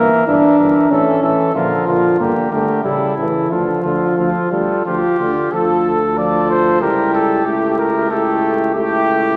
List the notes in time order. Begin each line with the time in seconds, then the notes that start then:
Already playing: E3 A#3 A#4 E5
0.27 G1 E3 D4 A#4 E5
0.58 G1 E3 A#4 E5
0.90 A1 E3 C#4 A4 E5
1.22 A1 E3 A4 E5
1.55 A#1 D3 F3 F4 A#4
1.87 A#1 D3 F4 A#4
2.20 G1 D3 A#3 G4 A#4
2.52 G1 D3 A3 G4 A#4
2.84 A1 C#3 G3 E4 A4
3.17 A1 C#3 E3 E4 A4
3.50 D2 D3 F3 F4 A4
3.83 D2 D3 F4 A4
4.18 D2 F3 F4 A4
4.51 D2 G3 F4 A4
4.85 D2 F3 F4 G4
5.19 D2 D3 F4
5.52 D2 F3 F4 A4
6.17 F3 F4 A4 D5
6.51 C5
6.81 C#2 G3 E4 G4 A#4
7.15 A4
7.46 C#2 A3 E4 G4
7.79 A#4
8.10 A3 E4 G4 A4
8.75 A3 E4 G4